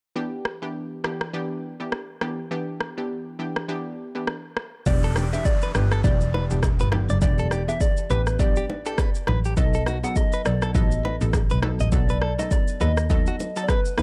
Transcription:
0.16 synth pluck E3 B3 D4 G4
0.45 cross-stick
0.62 synth pluck E3 B3 D4 G4
1.04 synth pluck E3 B3 D4 G4, cross-stick
1.21 cross-stick
1.33 synth pluck E3 B3 D4 G4
1.80 synth pluck E3 B3 D4 G4
1.92 cross-stick
2.21 synth pluck E3 B3 D4 G4, cross-stick
2.51 synth pluck E3 B3 D4 G4
2.80 cross-stick
2.97 synth pluck E3 B3 D4 G4
3.39 synth pluck E3 B3 D4 G4
3.56 cross-stick
3.68 synth pluck E3 B3 D4 G4
4.15 synth pluck E3 B3 D4 G4
4.27 cross-stick
4.57 cross-stick
4.86 double bass E1, synth pluck E3 B3 D4 G4, soft synth lead D5, kick, downlifter, low conga, shaker
5.03 clean electric guitar A4, shaker
5.16 clean electric guitar G4, cross-stick, low bongo, shaker
5.33 synth pluck E3 B3 D4 G4, soft synth lead E5, high bongo, shaker
5.45 soft synth lead D5, kick, high bongo, shaker
5.62 clean electric guitar B4, shaker
5.74 double bass G1, synth pluck E3 B3 D4 G4, soft synth lead B4, cross-stick, shaker
5.92 clean electric guitar A4, cross-stick, shaker
6.04 double bass E1, synth pluck E3 B3 D4 G4, soft synth lead D5, kick, low conga, shaker
6.21 shaker
6.34 clean electric guitar B4, low bongo
6.50 double bass E1, synth pluck E3 B3 D4 G4, shaker
6.63 kick, cross-stick, high bongo, shaker
6.79 double bass G1, clean electric guitar B4, shaker
6.92 synth pluck E3 B3 D4 G4, cross-stick, low bongo, low conga
7.09 double bass F#1, clean electric guitar D5, shaker
7.21 double bass E1, synth pluck E3 B3 D4 G4, soft synth lead D5, kick, low conga, shaker
7.38 clean electric guitar A4, shaker
7.51 clean electric guitar G4, cross-stick, low bongo, shaker
7.68 synth pluck E3 B3 D4 G4, soft synth lead E5, high bongo, shaker
7.81 soft synth lead D5, kick, high bongo, shaker
7.97 shaker
8.10 double bass A1, synth pluck E3 B3 D4 G4, soft synth lead B4, clean electric guitar B4, shaker
8.27 cross-stick, shaker
8.39 synth pluck E3 B3 D4 G4, soft synth lead D5, kick, low conga, shaker
8.56 clean electric guitar G4, shaker
8.70 low bongo
8.86 synth pluck E3 B3 D4 G4, clean electric guitar A4, shaker
8.98 clean electric guitar B4, kick, cross-stick, high bongo, shaker
9.15 shaker
9.27 double bass A1, clean electric guitar B4, cross-stick, low bongo, low conga
9.45 clean electric guitar G4, shaker
9.57 double bass B1, synth pluck F#3 B3 D#4 A4, soft synth lead D#5, kick, low conga, shaker
9.74 clean electric guitar A4, shaker
9.86 clean electric guitar F#4, cross-stick, low bongo, shaker
10.03 synth pluck F#3 B3 D#4 A4, soft synth lead F#5, high bongo, shaker
10.16 soft synth lead D#5, kick, high bongo, shaker
10.32 clean electric guitar B4, shaker
10.45 double bass B1, synth pluck F#3 B3 D#4 A4, soft synth lead D5, cross-stick, shaker
10.62 clean electric guitar A4, cross-stick, shaker
10.74 double bass A1, synth pluck F#3 B3 D#4 A4, soft synth lead D#5, kick, low conga, shaker
10.91 shaker
11.05 clean electric guitar B4, low bongo
11.21 double bass A1, synth pluck F#3 B3 D#4 A4, shaker
11.33 kick, cross-stick, high bongo, shaker
11.50 double bass B1, clean electric guitar B4, shaker
11.62 synth pluck F#3 B3 D#4 A4, cross-stick, low bongo, low conga
11.80 double bass A1, clean electric guitar D#5, shaker
11.92 double bass B1, synth pluck F#3 B3 D#4 A4, soft synth lead D5, kick, low conga, shaker
12.09 clean electric guitar B4, shaker
12.22 clean electric guitar A4, cross-stick
12.38 synth pluck F#3 B3 D#4 A4, soft synth lead D#5, high bongo, low bongo, shaker
12.51 soft synth lead D5, kick, high bongo, shaker
12.68 shaker
12.80 double bass D#2, synth pluck F#3 B3 D#4 A4, clean electric guitar B4, soft synth lead D#5, high bongo, shaker
12.97 cross-stick, shaker
13.10 synth pluck F#3 B3 D#4 A4, soft synth lead D#5, kick, low conga, shaker
13.27 clean electric guitar F#4, shaker
13.40 low bongo, shaker
13.56 synth pluck F#3 B3 D#4 A4, clean electric guitar A4, shaker
13.64 soft synth lead D5
13.68 soft synth lead B4, clean electric guitar B4, kick, cross-stick, high bongo, shaker
13.85 shaker
13.98 double bass D#2, clean electric guitar B4, cross-stick, low bongo, low conga, shaker

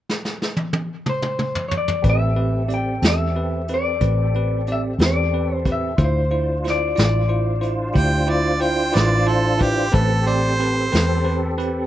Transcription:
0.09 snare
0.25 snare
0.42 snare
0.57 high tom
0.73 high tom
1.06 clean electric guitar C5, mid tom
1.22 mid tom
1.39 mid tom
1.55 floor tom
1.69 clean electric guitar C#5, floor tom
1.77 clean electric guitar D5
1.88 floor tom
2.02 fingered electric bass A1, tonewheel organ C4 G4 A4, tine electric piano C4 G4 B4, kick, closed hi-hat
2.10 clean electric guitar E5
2.36 tine electric piano C4 G4 B4
2.68 tine electric piano C4 G4 D5, closed hi-hat
2.74 clean electric guitar G5
3.02 fingered electric bass E2, tine electric piano C4 G4 A4, snare, closed hi-hat
3.08 clean electric guitar E5
3.36 tine electric piano C4 G4 B4
3.68 tine electric piano C4 G4 B4, closed hi-hat
3.74 clean electric guitar D5
4.01 fingered electric bass A1, tine electric piano C4 G4 B4, kick, closed hi-hat
4.35 tine electric piano C4 G4 B4
4.67 tine electric piano C4 G4 D5, closed hi-hat
4.72 clean electric guitar E5
4.99 fingered electric bass E2, tine electric piano C4 G4 B4, snare, closed hi-hat
5.06 clean electric guitar D5
5.33 tine electric piano C4 G4 B4
5.55 clean electric guitar C5
5.65 tine electric piano C4 G4 B4, kick, closed hi-hat
5.72 clean electric guitar E5
5.96 fingered electric bass D2, tonewheel organ D4 F4 C5, tine electric piano E4 F4 C5, kick, closed hi-hat
6.04 clean electric guitar C5
6.31 tine electric piano E4 F4 C5
6.64 tine electric piano E4 F4 C5, snare, closed hi-hat
6.70 clean electric guitar D5
6.95 fingered electric bass A1, tine electric piano E4 F4 D5, snare, closed hi-hat
7.03 clean electric guitar D5
7.29 tine electric piano E4 F4 C5
7.61 tine electric piano E4 F4 C5, closed hi-hat
7.94 fingered electric bass D2, tine electric piano E4 F4 G4, harmonica G5, kick, closed hi-hat
8.27 tine electric piano E4 F4 C5, harmonica D5
8.60 tine electric piano E4 F4 C5, harmonica G5, closed hi-hat
8.92 fingered electric bass A1, tine electric piano E4 F4 B4, harmonica D5, closed hi-hat
8.96 snare
9.25 tine electric piano E4 F4 C5, harmonica A4
9.58 tine electric piano E4 F4 B4, harmonica G4, kick, closed hi-hat
9.92 fingered electric bass A1, tine electric piano C4 G4 B4, tonewheel organ C4 G4 A4, harmonica A4, kick, closed hi-hat
10.26 tine electric piano C4 G4 D5, harmonica C5
10.60 tine electric piano C4 G4 B4, closed hi-hat
10.92 fingered electric bass E2, tine electric piano C4 G4 B4, snare, closed hi-hat
11.25 tine electric piano C4 G4 B4
11.58 tine electric piano C4 G4 B4, closed hi-hat

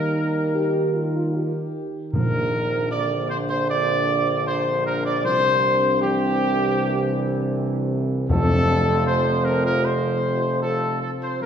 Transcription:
Already playing: tuba D#2, trombone section D#3 G3, french horn section D#4, trumpet section A#4
0.55 french horn section G4
0.94 french horn section F4
1.14 french horn section F4
1.35 french horn section G4
2.13 tuba A#1, timpani A#2, trombone section F3, french horn section C4 D4, trumpet section A#4
2.91 trombone section D3, trumpet section D5
3.29 trumpet section C5
3.50 trumpet section C5
3.69 trumpet section D5
4.47 trumpet section C5
4.86 trumpet section A#4
5.05 trumpet section D5
5.24 tuba C2, trombone section C3, trumpet section C5
6.01 trombone section E3, trumpet section G4
8.29 tuba F1, timpani F2, trombone section F3, french horn section C4 F4, trumpet section A4
9.06 trumpet section C5
9.45 trumpet section A#4
9.65 trumpet section A#4
9.85 trumpet section C5
10.62 trumpet section A4
11.02 trumpet section A4
11.23 trumpet section C5
11.41 tuba A#1, trombone section D3 G3, french horn section A#3, trumpet section A#4

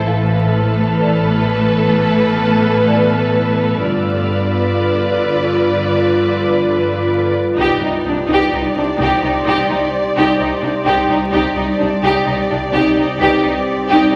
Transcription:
Already playing: celesta G#6
0.07 double bass section A1, cello section A2, viola section E3 A3, ambient pad B3 B4, violin section A4 B4 F6, celesta F5
0.11 violin section E6
1.02 celesta D5
2.88 celesta D5
3.82 double bass section G1, cello section G2, viola section D3 F4, ambient pad F4 B4 D5, violin section B4 D5
4.74 celesta F5
5.70 celesta B4
7.57 double bass section C2, cello section C2, viola section D#4, ambient pad G4 C5 D5, violin section G4 D5
7.81 cello section C2, viola section D#4, violin section D#4
8.04 double bass section C2, cello section C2, violin section D4, viola section D#4
8.28 cello section C2, viola section D#4
8.33 violin section G4
8.51 cello section C2, double bass section C2, viola section D#4, violin section D#4
8.74 cello section C2, violin section D4, viola section D#4
8.98 double bass section C2, cello section C2, viola section D#4, celesta G5
9.02 violin section G4
9.21 cello section C2, viola section D#4, violin section D#4
9.45 double bass section C2, cello section C2, viola section D#4, violin section G4
9.69 cello section C2, viola section D#4, violin section D#4
10.16 cello section C2, viola section D#4, violin section G4
10.39 double bass section C2, cello section C2, viola section D#4, violin section D#4
10.61 cello section C2, violin section D4, viola section D#4
10.85 cello section C2, double bass section C2, viola section D#4, violin section G4
11.08 cello section C2, viola section D#4, violin section D#4
11.32 double bass section C2, cello section C2, ambient pad C4 G4 D5, viola section D#4, violin section G4 D5
11.56 cello section C2, viola section D#4, violin section D#4
11.78 cello section C2, double bass section C2, violin section D4, viola section D#4
12.03 cello section C2, viola section D#4, violin section G4
12.26 double bass section C2, cello section C2, violin section D#4, viola section D#4
12.50 cello section C2, violin section D4, viola section D#4
12.73 double bass section C2, cello section C2, viola section D#4, violin section G4
12.96 cello section C2, violin section D#4, viola section D#4
13.19 double bass section C2, cello section C2, viola section D#4, violin section G4, celesta B4 B6
13.43 cello section C2, violin section D#4, viola section D#4
13.89 cello section C2, viola section D#4, violin section G4
14.11 double bass section C2, violin section D#4

